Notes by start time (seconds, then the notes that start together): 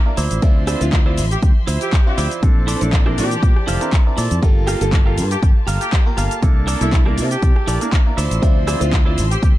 Already playing: A#3 E4 D5 A5
0.06 A#3 D4 E4 A#4
0.17 D2 F3 E4 F4 C5 D5 E5 C6, open hi-hat, shaker
0.31 A1, closed hi-hat, shaker
0.42 D2 F3 C4 D4 E5, kick, closed hi-hat, shaker
0.67 E4 F4 C5 D5, cross-stick, open hi-hat, shaker
0.81 D2 C4 D4 E4 F4, closed hi-hat, shaker
0.92 muted clean electric guitar stroke, kick, clap, closed hi-hat, shaker
1.06 C4 D4 E4 F4 C5 D5
1.18 A1, open hi-hat, shaker
1.31 G4, closed hi-hat, shaker
1.42 D2 G4, muted clean electric guitar stroke, kick, closed hi-hat, shaker
1.67 D2 E4 F4 C5 E5, open hi-hat, shaker
1.81 G4, closed hi-hat, shaker
1.93 kick, clap, closed hi-hat, shaker
2.06 C4 D4 E4 F4 G4
2.17 D2 E4 F4 C5 D5, open hi-hat, shaker
2.31 closed hi-hat, shaker
2.42 A#1 E3 C4 D4 E4 A4 C5 D5 A5, kick, closed hi-hat, shaker
2.67 E4 A4 C5 D5, open hi-hat, shaker
2.81 A#1 C4 D4 E4 A4, closed hi-hat, shaker
2.92 muted clean electric guitar stroke, kick, clap, closed hi-hat, shaker
3.06 C4 D4 E4 A4 A#4 C5 D5, cross-stick
3.18 A#2 G4, open hi-hat, shaker
3.31 closed hi-hat, shaker
3.42 A#2, muted clean electric guitar stroke, kick, closed hi-hat, shaker
3.56 cross-stick
3.67 F1 E4 A4 C5 F5, open hi-hat, shaker
3.81 C4 D4 E4 A#4, closed hi-hat, shaker
3.93 kick, clap, closed hi-hat, shaker
4.06 C4 D4 E4 A#4
4.17 A#2 E4 A4 C5 D5, open hi-hat, shaker
4.31 F2, closed hi-hat, shaker
4.42 G1 A#3 F4 G4 A4, kick, closed hi-hat, shaker
4.67 G4 A4 A#4 F5, cross-stick, open hi-hat, shaker
4.81 G1 A#3 F4 G4 A4, closed hi-hat, shaker
4.92 muted clean electric guitar stroke, kick, clap, closed hi-hat, shaker
5.05 A#3 F4 G4 A4 A#4 F5
5.17 G2, open hi-hat, shaker
5.31 G4, closed hi-hat, shaker
5.42 G1 G4, muted clean electric guitar stroke, kick, closed hi-hat, shaker
5.67 G1 G4 A4 A#4 F5, open hi-hat, shaker
5.81 G4, closed hi-hat, shaker
5.93 kick, clap, closed hi-hat, shaker
6.06 A#3 F4 G4 A#4
6.17 G1 G4 A4 A#4 F5, open hi-hat, shaker
6.31 closed hi-hat, shaker
6.42 C2 A#3 D4 E4 A4 D5, kick, closed hi-hat, shaker
6.67 E4 A4 A#4 D5, open hi-hat, shaker
6.81 C2 A#3 D4 E4 A4, closed hi-hat, shaker
6.93 kick, clap, closed hi-hat, shaker
7.05 A#3 D4 E4 A4 A#4 D5, cross-stick
7.18 C3, open hi-hat, shaker
7.31 G4, closed hi-hat, shaker
7.42 C3, muted clean electric guitar stroke, kick, closed hi-hat, shaker
7.56 cross-stick
7.67 A#1 E4 A4 A#4 D5, open hi-hat, shaker
7.81 A#3 D4 E4 A#4, closed hi-hat, shaker
7.93 kick, clap, closed hi-hat, shaker
8.06 A#3 D4 E4 A#4
8.17 D2 F3 E4 F4 C5 D5 C6 E6, open hi-hat, shaker
8.31 A1, closed hi-hat, shaker
8.42 F3 C4 D4 E5, kick, closed hi-hat, shaker
8.67 E4 F4 C5 D5, cross-stick, open hi-hat, shaker
8.80 D2 C4 D4 E4 F4, closed hi-hat, shaker
8.92 muted clean electric guitar stroke, kick, clap, closed hi-hat, shaker
9.06 C4 D4 E4 F4 C5 D5
9.18 A1, open hi-hat, shaker
9.31 G4, closed hi-hat, shaker
9.42 D2 G4, muted clean electric guitar stroke, kick, closed hi-hat, shaker